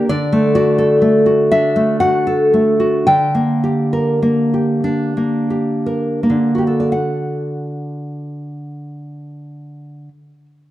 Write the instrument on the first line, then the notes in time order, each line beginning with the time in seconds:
nylon-string guitar
0.09 D3 D5
0.32 A3
0.55 F#4 D5
0.78 A4
1.02 A3
1.26 F#4
1.51 D4 E5
1.76 A3
2.00 F#4 F#5
2.27 A4
2.54 A3
2.80 F#4
3.07 D3 G5
3.35 A#3
3.64 G4
3.93 A#4
4.22 A#3
4.54 G4
4.84 D4
5.17 A#3
5.50 G4
5.86 A#4
6.23 A#3
6.30 D3
6.55 F#4 G4
6.67 A4
6.80 D5
6.92 F#5